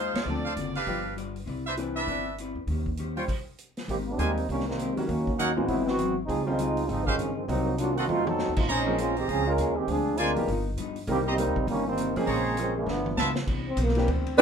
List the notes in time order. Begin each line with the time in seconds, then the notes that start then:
Already playing: D#2 G#3 D#4 F4 G#4 C5 F5
0.14 D#2 D5, snare, ride
0.25 D2 D3 F3 C4 D4 F4 A4
0.29 A4
0.45 D4 A4 C5 F5
0.56 F#1 D3 C4 F4 A4, closed hi-hat
0.75 D4 G4 B4 F5, open hi-hat
0.87 G1 F3 G3 B3 D4 F4 G4 B4, kick, open hi-hat
0.91 D5
1.16 G3 F4 B4 D5, closed hi-hat
1.36 open hi-hat
1.46 C2 C4 E4 B4 D5, kick, open hi-hat
1.66 D4 B4 C5 E5
1.77 E3 C4 D4 E4 B4 D5, closed hi-hat
1.95 D4 B4 E5, open hi-hat
2.07 G1 C4 E4 B4, kick, open hi-hat
2.11 D5
2.38 C4 E4 B4 D5, closed hi-hat
2.55 E2
2.67 D#2 D#3 C#4, kick, open hi-hat
2.72 G4 C5
2.86 kick
2.97 D#3 C#4 G4 C5, closed hi-hat
3.16 G3 C#4 F4 C5 C#5 G5, open hi-hat
3.28 kick, open hi-hat, crash
3.58 closed hi-hat
3.77 snare, open hi-hat
3.88 G#1 D#3 G#3 A#3 C4 G4 A#4, kick, open hi-hat
4.07 G3 A#3 C4 D#4
4.18 D#2 D#3 G#3 A#3 C4 G4 A#4 C5 G#5, closed hi-hat
4.37 open hi-hat
4.49 C2 D#3 G3 G#3 A#3 C4 C#4 G4, kick, open hi-hat
4.54 A#4
4.60 snare
4.67 D#3 G3 A#3 C4, snare
4.79 G#3 C4 G4 A#4, closed hi-hat
4.95 C3 D#3 F#3 G3 A#3 C#4 F#4, muted upright bass stroke, open hi-hat
5.06 D#2 D#3 F#3 A#3 C#4, kick, open hi-hat
5.11 C#4 F#4
5.27 kick
5.36 D#3 F#3 A#3 C#4 D#4 A#4 C#5 F#5, closed hi-hat
5.41 C#4 F#4
5.54 A1 E3 F#3 G#3 A#3 B3 C4 C#4 F4 F#4
5.66 G#1 G#2 F#3 B3 C4 E4, kick, open hi-hat
5.71 C4 E4
5.86 E3 B3 C4 F#4, snare
5.98 G#2 F#3 C4 E4, closed hi-hat
6.26 C#2 C#3 F3 C4 D#4 G#4, kick, open hi-hat
6.30 G3 C4 F4
6.45 D#3 G3 G#3 C4 C#4 D#4 F4
6.59 C#3 G3 C4 F4, closed hi-hat
6.77 open hi-hat
6.87 G#1 C#3 F3 G3 G#3 C4 D#4, kick, open hi-hat
6.91 C4 F4
7.04 D#3 F3 G#3 C#4 D#4 G4 C5 F5, kick
7.18 G2 C#3 G3 C4 F4, closed hi-hat
7.33 D#3 F3 G#3 C4
7.47 C2 C3 D#3 F#3 A#3 C4 D#4 F#4, kick, open hi-hat
7.51 F#4
7.76 C3 F#3 A#3 D4 F4, closed hi-hat
7.81 D#4 F#4
7.95 D#3 A#3 C4 F4 F#4 A4 D#5 F#5, open hi-hat
8.08 F2 D#3 F3 F#3 A3 C4 D#4 F4 F#4, high tom
8.25 F#3 C4 D#4 A4, high tom
8.38 F3 A3 D#4 F#4, snare
8.49 D#2
8.55 A1 A3 C4 D#4 F4, kick, crash
8.68 A#1 G#3 A#3 C4 C#4 D#4 G#4 C5 A#5, kick
8.86 F3 A#3 C4 C#4 G#4
8.97 G#3 A#3 C4 C#4 F4 G#4 C5, closed hi-hat
9.16 D#3 G#3 C4 G4, open hi-hat
9.28 C#2 F3 A#3 C4 C#4 G#4 C5, kick, open hi-hat
9.46 G#3 C#4 F4 A#4
9.58 D#2 A#3 C#4 G#4 C5, closed hi-hat
9.76 D#3 G#3 C4 G4
9.87 D2 D3 F3 G#3 C4 D4 G#4, kick, open hi-hat
9.92 F4
10.17 D3 G#3 C4 D4 F4 A#4 C5 D5 G#5, closed hi-hat
10.36 F#1 F3 A#3 B3 D#4 G4, open hi-hat
10.48 G1 G2 F3 B3 D#4, kick, open hi-hat
10.77 G2 F3 B3 D#4, closed hi-hat
10.96 open hi-hat
11.07 C2 C3 D#3 G3 A#3 C4 D#4 A#4, kick, open hi-hat
11.11 G4
11.26 C4 D#4 G4 C5 D#5 A#5
11.30 G3 A#3
11.37 C3 G3 A#3 C4 D#4 A#4, closed hi-hat
11.47 D#2
11.56 B1, kick
11.66 G1 C3 D#3 G3 A#3 C#4 D#4, kick, open hi-hat
11.86 D#3 G3 A#3 C4
11.97 C3 G3 A#3 D#4, closed hi-hat
12.15 F2 C#3 F3 G#3 A#3 C4 C#4 G#4, open hi-hat
12.26 A#1 A#3 C#4 G#4 C5 C#5 A#5, kick, open hi-hat
12.57 C#3 F3 G#3 A#3 C4 C#4 G#4 C5, closed hi-hat
12.76 D3 F3 A3 B3
12.86 G1 G2 F3 B3 E4, snare
13.06 high tom
13.16 C#2 G2 F3 B3 E4 F4 B4 E5 A5, snare
13.35 snare
13.46 C2 C3 E3 B3 D4, kick, crash
13.68 C4
13.77 B1 C3 E3 B3 D4, kick, hi-hat pedal, ride
13.83 A#3
13.88 snare
13.95 E3 B3 C4 D4 G4, snare, ride
14.08 D2 C3 E3 B3 D4, kick, ride
14.13 C4
14.26 ride
14.37 C2 C3 E3 D4 B4, kick, hi-hat pedal, ride